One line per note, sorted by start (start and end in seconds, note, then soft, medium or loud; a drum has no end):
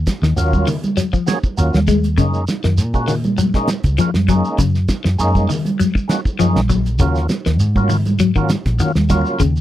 0.07 kick medium
0.07 snare medium
0.07 closed hi-hat soft
0.07 high conga medium
0.07 shekere medium
0.22 0.35 D#2 medium
0.22 0.43 D#3 medium
0.22 snare medium
0.22 shekere soft
0.36 0.64 D#2 medium
0.36 0.69 F#3 medium
0.36 0.69 A#3 medium
0.36 0.69 C#4 medium
0.36 0.69 F4 loud
0.36 closed hi-hat medium
0.36 shekere medium
0.53 kick medium
0.53 high conga medium
0.53 shekere soft
0.67 0.87 D#3 medium
0.67 open hi-hat medium
0.67 low conga medium
0.67 shekere medium
0.84 closed hi-hat soft
0.84 high conga medium
0.84 shekere soft
0.97 1.08 F#3 medium
0.97 snare soft
0.97 closed hi-hat medium
0.97 shekere medium
1.13 1.33 F3 medium
1.13 kick medium
1.13 shekere soft
1.26 1.38 F#3 medium
1.26 1.39 A#3 medium
1.26 1.39 C#4 medium
1.26 1.39 G#4 medium
1.26 snare medium
1.26 closed hi-hat medium
1.26 high conga medium
1.26 shekere medium
1.44 muted fingered electric bass stroke soft
1.44 kick medium
1.44 shekere soft
1.57 1.73 D#2 medium
1.57 1.79 F#3 medium
1.57 1.80 A#3 medium
1.57 1.80 C#4 medium
1.57 1.80 F4 medium
1.57 closed hi-hat medium
1.57 shekere medium
1.74 2.18 D#2 medium
1.74 snare medium
1.74 high conga medium
1.74 shekere soft
1.88 2.07 G#3 medium
1.88 kick medium
1.88 snare soft
1.88 closed hi-hat soft
1.88 high conga medium
1.88 low conga medium
1.88 shekere medium
2.04 closed hi-hat medium
2.04 shekere soft
2.17 2.45 F#2 loud
2.17 2.37 C#3 medium
2.17 2.44 G#3 medium
2.17 2.44 A#3 medium
2.17 2.45 C#4 medium
2.17 2.45 D#4 medium
2.17 kick medium
2.17 snare soft
2.17 closed hi-hat medium
2.17 shekere medium
2.34 shekere soft
2.48 snare medium
2.48 closed hi-hat soft
2.48 high conga medium
2.48 shekere medium
2.64 2.79 F#2 medium
2.64 2.84 D#3 medium
2.64 snare medium
2.64 shekere soft
2.78 3.72 A#2 loud
2.78 snare soft
2.78 closed hi-hat medium
2.78 shekere medium
2.94 3.14 G#3 medium
2.94 3.15 A#3 medium
2.94 3.15 C#4 medium
2.94 3.15 F#4 medium
2.94 kick medium
2.94 shekere soft
3.08 3.27 D#3 medium
3.08 snare soft
3.08 open hi-hat medium
3.08 low conga medium
3.08 shekere medium
3.24 closed hi-hat medium
3.24 high conga medium
3.24 shekere soft
3.38 3.49 F#3 medium
3.38 closed hi-hat medium
3.38 high conga medium
3.38 shekere medium
3.54 3.69 G#3 medium
3.54 3.70 A#3 medium
3.54 3.70 C#4 medium
3.54 3.70 D#4 medium
3.54 kick medium
3.54 snare soft
3.54 shekere soft
3.68 snare medium
3.68 closed hi-hat medium
3.68 high conga loud
3.68 shekere medium
3.83 3.97 C#2 medium
3.83 kick medium
3.83 closed hi-hat soft
3.83 shekere soft
3.98 4.18 F3 medium
3.98 4.10 G#3 medium
3.98 4.11 A#3 medium
3.98 4.11 C#4 medium
3.98 4.11 F4 loud
3.98 closed hi-hat medium
3.98 shekere medium
4.14 4.41 F#2 medium
4.14 snare medium
4.14 high conga medium
4.14 shekere soft
4.28 4.48 F#3 medium
4.28 4.61 G#3 medium
4.28 4.61 A#3 medium
4.28 4.61 C#4 medium
4.28 4.62 D#4 loud
4.28 kick medium
4.28 snare soft
4.28 closed hi-hat soft
4.28 low conga medium
4.28 shekere medium
4.45 shekere soft
4.58 4.85 F#2 loud
4.58 4.78 C#3 medium
4.58 kick medium
4.58 closed hi-hat medium
4.58 shekere medium
4.75 snare soft
4.75 shekere soft
4.88 kick medium
4.88 snare medium
4.88 closed hi-hat soft
4.88 high conga medium
4.88 shekere medium
5.04 5.18 F#2 medium
5.04 muted clean electric guitar stroke medium
5.04 snare medium
5.04 shekere soft
5.19 5.46 F#2 medium
5.19 5.50 G#3 medium
5.19 5.51 A#3 medium
5.19 5.51 C#4 medium
5.19 5.52 D#4 medium
5.19 closed hi-hat medium
5.19 shekere medium
5.35 kick medium
5.35 high conga medium
5.35 shekere soft
5.49 5.68 D#3 medium
5.49 open hi-hat medium
5.49 low conga medium
5.49 shekere medium
5.65 closed hi-hat soft
5.65 high conga medium
5.65 shekere soft
5.79 5.90 F#3 medium
5.79 closed hi-hat medium
5.79 high conga medium
5.79 shekere medium
5.95 muted clean electric guitar stroke medium
5.95 kick medium
5.95 shekere soft
6.08 6.20 G#3 medium
6.08 6.20 A#3 medium
6.08 6.20 C#4 medium
6.08 6.21 F#4 medium
6.08 snare medium
6.08 closed hi-hat soft
6.08 high conga loud
6.08 shekere medium
6.25 muted fingered electric bass stroke soft
6.25 kick medium
6.25 shekere soft
6.39 6.54 F#2 medium
6.39 6.59 F3 medium
6.39 6.61 G#3 medium
6.39 6.61 A#3 medium
6.39 6.61 C#4 medium
6.39 6.62 D#4 medium
6.39 closed hi-hat medium
6.39 shekere medium
6.56 7.00 A#1 medium
6.56 snare medium
6.56 high conga medium
6.56 shekere soft
6.69 6.89 F#3 medium
6.69 kick medium
6.69 closed hi-hat soft
6.69 low conga medium
6.69 shekere medium
6.86 closed hi-hat soft
6.86 shekere soft
6.99 7.26 D#2 medium
6.99 7.19 C#3 medium
6.99 7.26 F#3 medium
6.99 7.27 A#3 medium
6.99 7.27 C#4 medium
6.99 7.27 F4 medium
6.99 kick medium
6.99 closed hi-hat medium
6.99 shekere loud
7.15 snare soft
7.15 shekere soft
7.29 snare medium
7.29 closed hi-hat soft
7.29 high conga medium
7.29 shekere medium
7.46 7.60 D#2 medium
7.46 7.65 D#3 medium
7.46 snare medium
7.46 shekere soft
7.59 8.54 G#2 loud
7.59 closed hi-hat medium
7.59 shekere medium
7.76 7.96 F#3 medium
7.76 7.97 A#3 medium
7.76 7.97 C#4 medium
7.76 7.97 F4 medium
7.76 kick medium
7.76 high conga medium
7.76 shekere soft
7.89 8.09 D#3 medium
7.89 open hi-hat medium
7.89 low conga medium
7.89 shekere medium
8.05 closed hi-hat medium
8.05 high conga medium
8.05 shekere soft
8.19 8.30 F#3 medium
8.19 closed hi-hat medium
8.19 shekere medium
8.35 8.55 D#3 medium
8.35 8.51 F#3 medium
8.35 8.51 A#3 medium
8.35 8.52 C#4 medium
8.35 8.52 F4 medium
8.35 kick medium
8.35 shekere soft
8.49 snare medium
8.49 closed hi-hat medium
8.49 high conga loud
8.49 shekere medium
8.65 8.78 A#1 medium
8.65 kick medium
8.65 snare soft
8.65 closed hi-hat soft
8.65 shekere soft
8.79 9.00 D#3 medium
8.79 8.91 F#3 medium
8.79 8.92 A#3 medium
8.79 8.92 C#4 medium
8.79 8.92 F4 loud
8.79 closed hi-hat medium
8.79 shekere medium
8.95 9.23 D#2 medium
8.95 snare medium
8.95 high conga medium
8.95 shekere soft
9.09 9.42 F#3 medium
9.09 9.42 A#3 medium
9.09 9.42 C#4 medium
9.09 9.42 F4 loud
9.09 muted clean electric guitar stroke medium
9.09 kick medium
9.09 snare soft
9.09 closed hi-hat soft
9.09 high conga medium
9.09 low conga medium
9.09 shekere medium
9.26 shekere soft
9.40 9.61 D#2 loud
9.40 9.59 C#3 medium
9.40 kick medium
9.40 closed hi-hat medium
9.40 shekere medium
9.56 shekere soft